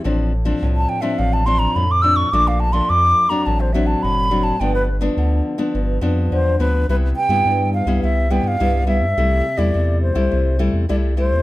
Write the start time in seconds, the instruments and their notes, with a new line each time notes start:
0.04 sub bass A1, nylon-string guitar A2 F3 C4 D4
0.45 nylon-string guitar F3 C4 D4
0.62 sub bass C2, nylon-string guitar A2
0.77 flute A5
0.89 flute G5
1.01 nylon-string guitar F3 C4 D4, flute E5
1.18 sub bass A1, nylon-string guitar A2, flute F5
1.33 flute A5
1.46 nylon-string guitar F3 C4 D4, flute C6
1.59 flute A#5
1.75 sub bass F2, nylon-string guitar A2, flute B5
1.91 flute D6
2.02 nylon-string guitar F3 C4 D4, flute E6
2.16 flute C#6
2.32 sub bass A#1, nylon-string guitar A#2 F3 A3 D4, flute D6
2.48 flute F5
2.60 flute A5
2.73 nylon-string guitar F3 A3 D4, flute C6
2.89 sub bass F2, nylon-string guitar F2, flute D6
3.29 nylon-string guitar F#3 C4 D4, flute A#5
3.46 sub bass A1, nylon-string guitar A2, flute A5
3.60 flute C5
3.73 nylon-string guitar F#3 C4 D4, flute E5
3.87 flute A5
4.03 sub bass F#1, nylon-string guitar A2, flute B5
4.31 nylon-string guitar F#3 C4 D4
4.44 flute A5
4.60 sub bass G1, nylon-string guitar G2 F3 B3 D4, flute G5
4.75 flute B4
5.01 nylon-string guitar F3 B3 D4
5.17 sub bass D2, nylon-string guitar D3
5.58 nylon-string guitar F3 B3 D4
5.74 sub bass G1, nylon-string guitar G2
6.01 sub bass F2, nylon-string guitar F3 B3 D4
6.31 sub bass E2, nylon-string guitar D3, flute C5
6.59 sub bass D2, nylon-string guitar F3 B3 D4, flute B4
6.89 sub bass C2, nylon-string guitar C3 G3 B3 E4, flute B4
7.16 flute G5
7.29 sub bass G2, nylon-string guitar G3 B3 E4
7.45 sub bass G2, nylon-string guitar G2
7.74 flute F5
7.86 sub bass C2, nylon-string guitar G3 B3 E4
8.03 sub bass C2, nylon-string guitar C3, flute E5
8.30 nylon-string guitar G3 B3 E4, flute G5
8.43 sub bass G2, flute G5
8.48 flute F5
8.60 sub bass C2, nylon-string guitar G2 G3 B3 E4
8.87 nylon-string guitar G3 B3 E4, flute E5
9.01 sub bass G2
9.17 sub bass C2, nylon-string guitar C3 G3 A3 E4
9.57 sub bass E2, nylon-string guitar G3 A3 E4, flute D5
9.74 sub bass E2, nylon-string guitar C3
10.02 flute C5
10.15 sub bass C2, nylon-string guitar G3 A3 E4
10.31 sub bass C2, nylon-string guitar C3
10.59 nylon-string guitar G3 A3 E4
10.73 sub bass E2
10.89 sub bass C2, nylon-string guitar C3 G3 A3 E4, flute D5
11.17 nylon-string guitar G3 A3 E4, flute C5
11.31 sub bass E2